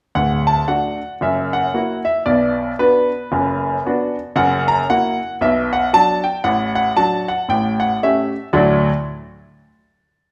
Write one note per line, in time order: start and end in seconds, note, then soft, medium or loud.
0.15 0.60 D1 medium
0.15 0.60 D2 medium
0.15 0.43 F#5 medium
0.47 0.65 A5 medium
0.68 0.97 A3 soft
0.68 0.97 D4 soft
0.68 0.98 F#4 soft
0.68 1.13 F#5 medium
1.21 1.66 F#1 medium
1.21 1.66 F#2 medium
1.21 1.49 E5 medium
1.53 1.98 F#5 medium
1.74 2.03 A#3 soft
1.74 2.03 E4 soft
1.74 2.03 F#4 medium
2.05 2.22 E5 medium
2.26 2.71 B1 medium
2.26 2.71 B2 medium
2.26 2.71 D5 medium
2.79 3.08 B3 soft
2.79 3.08 D4 soft
2.79 3.08 F#4 medium
2.79 4.13 B4 medium
3.32 3.76 F#1 medium
3.32 3.76 F#2 medium
3.85 4.14 B3 soft
3.85 4.15 D4 medium
3.85 4.15 F#4 medium
4.36 4.81 F#1 medium
4.36 4.81 F#2 medium
4.36 4.64 F#5 medium
4.68 4.85 A#5 medium
4.90 5.18 A#3 soft
4.90 5.19 E4 soft
4.90 5.19 F#4 medium
4.90 5.34 F#5 loud
5.41 5.86 B1 medium
5.41 5.86 B2 medium
5.41 5.69 E5 medium
5.73 5.90 F#5 medium
5.93 6.22 F#3 medium
5.93 6.22 D4 medium
5.93 6.22 F#4 medium
5.93 6.21 A5 loud
6.24 6.42 G5 medium
6.44 6.90 A1 medium
6.44 6.90 A2 medium
6.44 6.72 F#5 medium
6.75 6.94 F#5 medium
6.97 7.26 F#3 soft
6.97 7.26 D4 soft
6.97 7.26 F#4 medium
6.97 7.25 A5 medium
7.28 7.46 F#5 medium
7.48 7.94 A1 medium
7.48 7.94 A2 medium
7.48 7.78 G5 medium
7.80 7.98 F#5 medium
8.03 8.32 A3 soft
8.03 8.32 C#4 soft
8.03 8.32 G4 medium
8.03 8.48 E5 medium
8.53 8.88 D2 medium
8.53 8.88 A2 medium
8.53 8.88 F#3 medium
8.53 8.88 A3 medium
8.53 8.88 D4 medium
8.53 8.88 F#4 medium
8.53 8.88 D5 medium